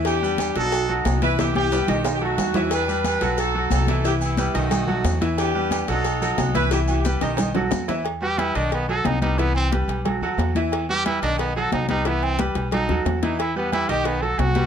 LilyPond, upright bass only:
\new Staff \with { instrumentName = "Upright bass" } { \clef bass \time 4/4 \key e \minor \tempo 4 = 180 e,4. b,,4. c,4~ | c,4. b,,4. e,4~ | e,4. b,,4. c,4~ | c,4. b,,4. e,4~ |
e,4. b,,4. c,4~ | c,4. b,,4. e,4~ | e,4. b,,4. c,4~ | c,4. b,,4 dis,8 e,4~ |
e,4. b,,4. c,4~ | c,4. b,,4 dis,8 e,4~ | e,4. b,,4. c,4 | }